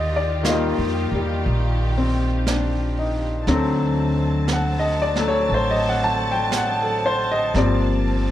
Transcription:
Already playing: D#2 D#3 F4 G4 D5 D#5
0.16 D5
0.43 D#3 G3 F4, brush sweep, snare, hi-hat pedal
0.48 A#3 D#5
0.78 F2
1.12 E2 G3
1.46 A#1, brush sweep
1.98 C4
2.47 D4, brush sweep, snare, hi-hat pedal
2.98 D#4
3.47 D2 D3 F#3 A3 C4 A5, brush sweep, snare
4.48 brush sweep, snare, hi-hat pedal
4.53 F#5
4.79 D#5
5.02 D5
5.16 F#3 A3, snare
5.28 C#5
5.49 A1, brush sweep
5.54 C5
5.71 D#5
5.89 F#5
6.04 A5
6.32 G5
6.52 brush sweep, snare, hi-hat pedal
6.57 F#5
6.81 A4
7.06 C5
7.31 D#5
7.54 G1 F3 G3 A#3 C4 D5, brush sweep, snare

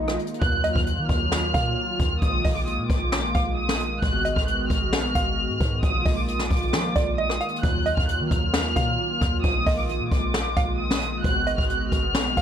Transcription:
Already playing: A#1 D#3 G#3 A#3 F4, swell
0.08 cross-stick
0.19 closed hi-hat
0.27 closed hi-hat
0.34 closed hi-hat
0.42 D#2 D#3 F#3 A#3 F4 F#6, kick, closed hi-hat
0.64 D#5, closed hi-hat
0.75 D#2 F6, kick
0.86 F#6, closed hi-hat
0.98 D#3
1.09 D#2 F6, kick, closed hi-hat
1.32 snare, closed hi-hat
1.54 A#2 F5, kick, closed hi-hat
1.99 D#2, kick, closed hi-hat
2.22 A#1 G#3 A#3 D#6, kick, closed hi-hat
2.45 A#1 D#5, kick, open hi-hat
2.56 D6
2.67 D#6, closed hi-hat
2.78 A#2
2.90 A#1 D6, kick, closed hi-hat
3.12 snare, closed hi-hat
3.35 A#1 F5, kick, closed hi-hat
3.57 D#6
3.69 snare
3.80 closed hi-hat
4.02 G#1 D#3 B3 F#4 F#6, kick, closed hi-hat
4.25 D#5, closed hi-hat
4.36 G#1 F6, kick
4.48 F#6, closed hi-hat
4.70 G#1 F6, kick, closed hi-hat
4.93 A#1, snare, closed hi-hat
5.15 G#1 F5, kick, closed hi-hat
5.49 G#2
5.60 G#2, kick, closed hi-hat
5.83 A#1 A#3 F4 D#6, kick, closed hi-hat
6.05 A#1 D#5, kick, open hi-hat
6.17 D6
6.28 D#6, closed hi-hat
6.39 snare
6.51 A#1 D6, kick, closed hi-hat
6.56 closed hi-hat
6.62 closed hi-hat
6.68 closed hi-hat
6.73 F3, snare, closed hi-hat
6.96 A#1 D5, kick, closed hi-hat
7.18 D#5 D#6
7.30 cross-stick
7.41 F5, closed hi-hat
7.48 closed hi-hat
7.56 closed hi-hat
7.63 D#2 F#3 F4 F#6, kick, closed hi-hat
7.86 D#5, closed hi-hat
7.97 D#2 F6, kick
8.08 F#6, closed hi-hat
8.20 D#3
8.31 D#2 F6, kick, closed hi-hat
8.54 snare, closed hi-hat
8.76 A#2 F5, kick, closed hi-hat
9.21 D#2, kick, cross-stick, closed hi-hat
9.44 A#1 G#3 D#6, kick, closed hi-hat
9.66 A#1 D#5, kick, open hi-hat
9.78 D6
9.89 D#6, closed hi-hat
10.00 A#2
10.12 A#1 D6, kick, closed hi-hat
10.34 snare, closed hi-hat
10.57 A#1 F5, kick, closed hi-hat
10.79 D#6
10.91 snare
11.02 closed hi-hat
11.24 G#1 B3 F#4 F#6, kick, closed hi-hat
11.47 D#5, closed hi-hat
11.58 G#1 F6, kick
11.69 F#6, closed hi-hat
11.91 G#1 F6, kick, closed hi-hat
12.15 A#1, snare, closed hi-hat
12.37 G#1 F5, kick, closed hi-hat

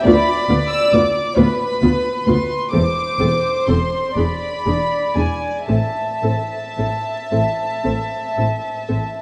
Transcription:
0.04 D2 B3 F4 D5 B5
0.49 D2 B3 F4
0.70 E6
0.92 D2 B3 F4 D6
1.37 D2 B3 F4 B4 B5
1.82 D2 B3 F4
2.27 D2 B3 F4 C6
2.73 E1 E2 C4 A4 C5 D6
3.20 E1 E2 C4 A4
3.67 E1 E2 C4 A4 C6
4.16 E1 E2 D4 G#4 D5 B5
4.66 E1 E2 D4 G#4
5.16 E1 E2 D4 G#4 G#5
5.68 A1 A2 C4 A4 E5 A5
6.23 A1 A2 C4 A4
6.78 A1 A2 C4 A4
7.31 A1 A2 C4 A4
7.84 A1 A2 C4 A4
8.37 A1 A2 C4 A4
8.88 A1 A2 C4 A4

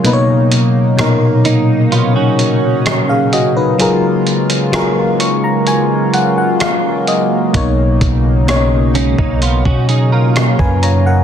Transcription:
Already playing: F#3
0.03 B2 C#3 A#3 D#4 B4, closed hi-hat
0.13 C#5
0.52 closed hi-hat
0.97 A#2 B2 D#4 A#4, cross-stick, closed hi-hat
1.45 A#3 D#4, closed hi-hat
1.90 B3 C#4 F4, closed hi-hat
2.16 C#4 F#4
2.39 closed hi-hat
2.86 cross-stick, closed hi-hat
3.09 G#4 F5
3.33 F#4 D#5, closed hi-hat
3.57 D#4 B4
3.78 F#3 G#3 A#3 F4 G#4 A#4, closed hi-hat
4.27 closed hi-hat
4.50 closed hi-hat
4.72 F#3 F4 G#4 A#4, cross-stick, closed hi-hat
5.20 C#6, closed hi-hat
5.44 A#5
5.67 F4 G#5, closed hi-hat
6.14 F#5, closed hi-hat
6.38 F#5
6.60 F5, cross-stick, closed hi-hat
7.07 D#5, closed hi-hat
7.53 B1 B2 A#3 D#4 C#5, kick, closed hi-hat
8.01 B1, kick, closed hi-hat
8.47 B2 A#3 C#4 C#5, cross-stick, closed hi-hat
8.56 D#4
8.95 G#3 C#4, closed hi-hat
9.19 B1 A#3 D#4, kick
9.42 B3 C#4 F4, closed hi-hat
9.65 B2 C#4 F#4, kick
9.89 D#4 G#4, closed hi-hat
10.12 F4 A#4
10.36 cross-stick, closed hi-hat
10.59 F#2 B4 G#5, kick
10.83 C#5 A#5, closed hi-hat
11.06 A#4 F#5

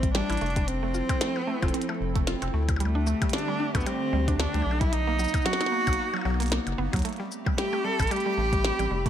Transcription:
Already playing: A1 G3 A3 C4
0.03 kick, closed hi-hat
0.15 G3 D4, snare, closed hi-hat
0.30 A1 E4, closed hi-hat, percussion blips
0.32 closed hi-hat
0.37 closed hi-hat
0.41 F1 A3, closed hi-hat
0.46 closed hi-hat
0.50 closed hi-hat
0.56 G3, kick, closed hi-hat
0.68 F3 C4 E4 A4, closed hi-hat
0.83 A3
0.94 F4, cabasa
1.09 C4, kick, closed hi-hat, percussion blips
1.21 A3, snare, closed hi-hat
1.36 percussion blips
1.47 A3
1.62 F1 F4, kick, closed hi-hat, percussion blips
1.68 closed hi-hat
1.74 C4, closed hi-hat
1.82 closed hi-hat
1.89 A3, percussion blips
2.01 F1
2.15 A3, kick, closed hi-hat
2.27 F4, snare, closed hi-hat
2.42 F1 C4, closed hi-hat, percussion blips
2.54 D2 A3
2.69 kick, closed hi-hat, percussion blips
2.76 D3 G3 A3, closed hi-hat, percussion blips
2.80 A3 G4
2.85 percussion blips
2.95 D4
3.07 A3, cabasa
3.22 G3, kick, closed hi-hat, percussion blips
3.29 snare, closed hi-hat
3.33 D4, closed hi-hat
3.38 closed hi-hat
3.48 G3, percussion blips
3.60 D4
3.75 D2 A3 B3, kick, closed hi-hat, percussion blips
3.81 cabasa
3.86 G3 C4, closed hi-hat, percussion blips
4.13 D2 G3
4.28 D4, kick, closed hi-hat
4.40 A3 D4, snare, closed hi-hat
4.54 D2 G3, closed hi-hat, percussion blips
4.62 B1, percussion blips
4.71 percussion blips
4.81 G3 E4, kick, closed hi-hat
4.92 A#3 B3 D#4, closed hi-hat
5.07 A#3
5.19 F#3, cabasa
5.24 cabasa
5.28 cabasa
5.34 kick, closed hi-hat, cabasa, percussion blips
5.37 cabasa
5.42 F#3 F#4, snare, closed hi-hat, cabasa
5.53 snare
5.61 D#4, snare, closed hi-hat, percussion blips
5.66 snare
5.72 A#3
5.87 B1 F#3, kick, closed hi-hat, cabasa, percussion blips
5.93 closed hi-hat
6.14 F#3, percussion blips
6.17 percussion blips
6.21 B1 F#3, percussion blips
6.25 percussion blips
6.30 percussion blips
6.34 percussion blips
6.40 A#3, closed hi-hat
6.42 closed hi-hat
6.46 closed hi-hat
6.48 closed hi-hat
6.50 A#3, snare, closed hi-hat
6.52 closed hi-hat
6.67 F#1, closed hi-hat, percussion blips
6.78 F#1 B3
6.93 D#2 F#3, kick, closed hi-hat, percussion blips
6.96 closed hi-hat
6.99 closed hi-hat
7.02 A3 C4 G4 B5, closed hi-hat
7.05 closed hi-hat
7.09 closed hi-hat
7.13 closed hi-hat
7.16 G3, closed hi-hat
7.32 cabasa
7.46 G3, kick, percussion blips
7.58 G3 G4, snare, closed hi-hat
7.73 A3, percussion blips
7.85 G3 A4
8.00 A1, kick, closed hi-hat, cabasa, percussion blips
8.02 closed hi-hat
8.07 G3 G4, closed hi-hat
8.11 closed hi-hat, percussion blips
8.16 closed hi-hat
8.20 closed hi-hat
8.26 G3
8.38 A1 A3
8.53 G3, kick, closed hi-hat
8.65 snare, closed hi-hat
8.79 A1 G3, closed hi-hat, percussion blips
8.91 F1 G3
9.06 A3, kick, closed hi-hat

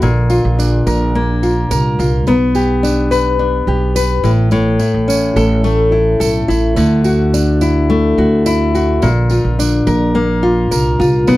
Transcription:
Already playing: D3 D4
0.02 A#1 A#2, tambourine
0.30 F4, tambourine
0.45 A#1
0.59 D4, tambourine
0.87 A#1 A#4, tambourine
1.15 A#3
1.43 F4, tambourine
1.71 C2 A#4, tambourine
1.99 C2 F4, tambourine
2.27 B1 B3, tambourine
2.55 G4, tambourine
2.83 D4, tambourine
3.11 B4, tambourine
3.39 D4
3.67 B1 G4
3.96 B4, tambourine
4.23 A1 A2, tambourine
4.51 A2, tambourine
4.79 E4, tambourine
4.94 A1
5.08 C#4, tambourine
5.36 A1 A4, tambourine
5.64 A3, tambourine
5.92 E4
6.20 B1 A4, tambourine
6.48 A1 E4, tambourine
6.76 D2 D3, tambourine
7.04 F#4, tambourine
7.34 D4, tambourine
7.61 E4, tambourine
7.90 A3
8.18 D2 F#4
8.46 E4, tambourine
8.75 F#4, tambourine
9.02 A#1 A#2, tambourine
9.30 F4, tambourine
9.44 A#1
9.59 D4, tambourine
9.87 A#1 A#4, tambourine
10.15 A#3
10.43 F4
10.71 C2 A#4, tambourine
10.99 C2 F4, tambourine
11.27 B1 B3, tambourine

